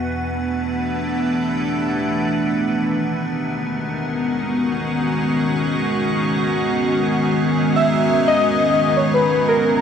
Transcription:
0.00 2.26 E3 medium
0.00 2.26 A3 medium
0.00 9.81 B3 medium
0.00 2.26 D4 medium
0.59 2.26 G4 medium
2.26 9.81 D#3 medium
2.87 9.81 G#3 medium
3.09 9.81 C#4 medium
3.50 9.81 F#4 medium
7.76 9.81 E2 medium
7.76 8.30 E5 loud
8.28 8.99 D#5 loud
8.97 9.05 C#5 medium
9.14 9.50 B4 medium
9.48 9.81 A#4 medium

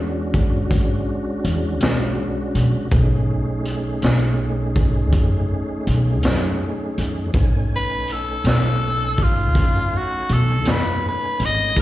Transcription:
0.00 0.71 E2 medium
0.00 2.88 G#3 medium
0.00 2.88 C#4 medium
0.00 2.88 D4 medium
0.00 2.88 F#4 medium
0.34 kick medium
0.34 closed hi-hat medium
0.71 1.05 B1 medium
0.71 kick medium
0.71 closed hi-hat medium
1.45 1.81 E2 loud
1.45 closed hi-hat medium
1.81 2.16 B1 medium
1.81 snare loud
1.81 closed hi-hat medium
2.55 2.72 B1 medium
2.55 closed hi-hat medium
2.91 3.99 B1 medium
2.91 7.32 A3 medium
2.91 7.31 C#4 medium
2.91 7.31 D#4 medium
2.91 7.31 G#4 medium
2.91 kick loud
2.91 closed hi-hat medium
3.65 closed hi-hat soft
4.02 5.13 B1 medium
4.02 snare loud
4.02 closed hi-hat medium
4.75 kick medium
4.75 closed hi-hat medium
5.12 5.47 F#2 medium
5.12 kick medium
5.12 closed hi-hat medium
5.87 6.24 B1 loud
5.87 closed hi-hat medium
6.23 6.58 F#2 medium
6.23 snare loud
6.23 closed hi-hat medium
6.98 7.34 F#2 medium
6.98 closed hi-hat medium
7.34 8.41 B1 medium
7.34 11.74 A3 medium
7.34 11.73 C#4 medium
7.34 11.74 D#4 medium
7.34 11.73 G#5 medium
7.34 kick loud
7.34 closed hi-hat medium
7.76 8.14 B4 medium
8.08 closed hi-hat soft
8.13 8.48 A4 medium
8.44 9.55 B1 medium
8.44 snare medium
8.44 closed hi-hat medium
8.50 9.24 A4 medium
9.18 kick medium
9.18 closed hi-hat medium
9.23 9.99 F4 medium
9.55 9.90 F#2 medium
9.55 kick medium
9.55 closed hi-hat medium
9.98 10.35 F#4 medium
10.29 10.67 B1 loud
10.29 closed hi-hat medium
10.33 10.72 A4 medium
10.65 11.01 F#2 medium
10.65 snare loud
10.65 closed hi-hat medium
10.71 11.06 B4 medium
11.09 11.47 B4 medium
11.40 11.77 G#1 medium
11.40 closed hi-hat medium
11.45 11.79 D#5 loud
11.75 11.82 F#1 medium
11.75 11.82 A#3 medium
11.75 11.82 D#4 medium
11.75 11.82 E4 medium
11.75 11.82 G#4 medium
11.75 kick loud
11.75 closed hi-hat medium

